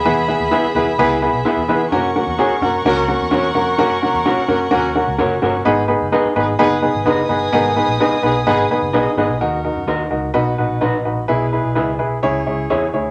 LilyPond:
<<
  \new Staff \with { instrumentName = "String section" } { \time 4/4 \key fis \mixolydian \tempo 4 = 128 <gis' e'' b''>1 | <ais' fis'' cis'''>1~ | <ais' fis'' cis'''>1 | r2 <b' gis'' dis'''>2~ |
<b' gis'' dis'''>1 | r1 | r1 | }
  \new Staff \with { instrumentName = "Clean electric guitar" } { \time 4/4 \key fis \mixolydian r4 <e' gis' b' e''>8 r4. <e' gis' b' e''>8 <e' gis' b' e''>16 r16 | r4 <cis' fis' ais' cis''>8 r4. <cis' fis' ais' cis''>8 r8 | r4 <cis' fis' ais' cis''>8 r4. <cis' fis' ais' cis''>8 <cis' fis' ais' cis''>16 r16 | r4 <dis' gis' b' dis''>8 r4. <dis' gis' b' dis''>8 r8 |
r4 <dis' gis' b' dis''>8 r4. <dis' gis' b' dis''>8 <dis' gis' b' dis''>16 r16 | r4 <dis' fis' ais' dis''>8 r4. <dis' fis' b' dis''>8 r8 | r4 <e' gis' b' e''>8 r4. <e' gis' cis'' e''>8 r8 | }
  \new Staff \with { instrumentName = "Horn section" } { \time 4/4 \key fis \mixolydian r4. <e' gis' b'>16 r16 <e' gis' b'>8. r4 r16 | r4. <cis' fis' ais'>16 r16 <cis' fis' ais'>8. r4 r16 | r4. <cis' fis' ais'>16 r16 <cis' fis' ais'>8. r4 r16 | r4. <dis' gis' b'>16 r16 <dis' gis' b'>8. r4 r16 |
r4. <dis' gis' b'>16 r16 <dis' gis' b'>8. r4 r16 | <dis' fis' ais'>4. r8 <dis' fis' b'>4. r8 | <e' gis' b'>4. r8 <e' gis' cis''>4. r8 | }
  \new Staff \with { instrumentName = "Grand piano" } { \time 4/4 \key fis \mixolydian <b e' gis' b'>8 <b e' gis' b'>8 <b e' gis' b'>8 <b e' gis' b'>8 <b e' gis' b'>8 <b e' gis' b'>8 <b e' gis' b'>8 <b e' gis' b'>8 | <ais cis' fis' ais'>8 <ais cis' fis' ais'>8 <ais cis' fis' gis'>8 <ais cis' fis' ais'>8 <ais cis' fis' ais'>8 <ais cis' fis' ais'>8 <ais cis' fis' ais'>8 <ais cis' fis' ais'>8 | <ais cis' fis' ais'>8 <ais cis' fis' ais'>8 <ais cis' fis' ais'>8 <ais cis' fis' ais'>8 <ais cis' fis' ais'>8 <ais cis' fis' ais'>8 <ais cis' fis' ais'>8 <ais cis' fis' ais'>8 | <b dis' gis' b'>8 <b dis' gis' b'>8 <b dis' gis' b'>8 <b dis' gis' b'>8 <b dis' gis' b'>8 <b dis' gis' b'>8 <b dis' gis' b'>8 <b dis' gis' b'>8 |
<b dis' gis' ais'>8 <b dis' gis' b'>8 <b dis' gis' b'>8 <b dis' gis' b'>8 <b dis' gis' b'>8 <b dis' gis' b'>8 <b dis' gis' b'>8 <b dis' gis' b'>8 | <dis' fis' ais'>8 <dis' fis' ais'>8 <dis' fis' ais'>8 <dis' fis' ais'>8 <dis' fis' b'>8 <dis' fis' b'>8 <dis' fis' b'>8 <dis' fis' b'>8 | <e' gis' b'>8 <e' gis' b'>8 <e' gis' b'>8 <e' gis' b'>8 <e' gis' cis''>8 <e' gis' cis''>8 <e' gis' cis''>8 <e' gis' cis''>8 | }
  \new Staff \with { instrumentName = "Grand piano" } { \clef bass \time 4/4 \key fis \mixolydian e4. r2 r8 | r1 | r1 | gis,4. r2 r8 |
gis,4. r2 r8 | dis4. r8 b,4. r8 | b,4. r8 cis4. r8 | }
  \new Staff \with { instrumentName = "Picked electric bass" } { \clef bass \time 4/4 \key fis \mixolydian e,8. dis,16 r8 e,8 cis,8. b,,16 r16 e,16 e8 | fis,8. e,16 r8 fis,8 cis,8. e,16 e,8 eis,8 | fis,8. e,16 r8 fis,8 dis,8. cis,16 fis,,8 g,,8 | gis,,8. fis,,16 r8 gis,,8 fis,,8. gis,,16 fis,,8 g,,8 |
gis,,8. ais,,16 r8 b,,8 gis,,8 r16 fis,,16 b,,16 r16 gis,,16 b,,16 | dis,8. fis,16 dis,8 cis,8 b,,8 ais,,8 ais,,8 ais,,8 | b,,8. b,,16 cis,8 b,,8 cis,8 cis,8 e,8 d,8 | }
>>